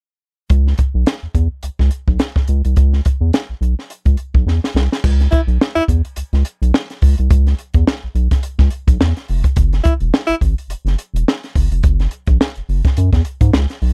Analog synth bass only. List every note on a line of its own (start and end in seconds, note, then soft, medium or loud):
0.50 0.74 C#2 medium
0.94 1.05 B1 medium
1.23 1.28 E2 soft
1.34 1.48 E2 medium
1.63 1.70 C#2 soft
1.80 1.90 C#2 medium
2.08 2.18 B1 medium
2.49 2.62 C#2 loud
2.65 2.75 C2 medium
2.77 3.01 C#2 loud
3.21 3.31 E2 medium
3.49 3.54 B1 soft
3.61 3.75 B1 medium
4.05 4.16 C#2 medium
4.34 4.45 B1 medium
4.46 4.60 E2 medium
4.75 4.88 C2 medium
5.04 5.28 C#2 loud
5.47 5.58 B1 medium
5.76 5.81 E2 soft
5.88 6.02 E2 medium
6.17 6.23 C#2 soft
6.33 6.43 C#2 medium
6.62 6.72 B1 loud
7.02 7.15 C#2 loud
7.19 7.29 C2 medium
7.31 7.54 C#2 loud
7.74 7.85 E2 medium
8.03 8.08 B1 medium
8.15 8.28 B1 medium
8.59 8.69 C#2 medium
8.87 8.98 B1 loud
9.00 9.14 E2 medium
9.29 9.42 F1 medium
9.57 9.81 F#1 loud
10.01 10.11 E1 medium
10.29 10.34 G#1 soft
10.41 10.55 G#1 medium
10.68 10.75 F#1 soft
10.85 10.96 F#1 loud
11.14 11.24 E1 loud
11.55 11.68 F#1 loud
11.71 11.81 F1 medium
11.84 12.07 F#1 loud
12.28 12.38 A#1 medium
12.57 12.61 F#1 soft
12.69 12.82 F#1 loud
12.98 13.10 F#2 loud
13.12 13.23 E2 medium
13.41 13.51 G#2 loud
13.54 13.66 C#2 medium
13.82 13.93 B1 medium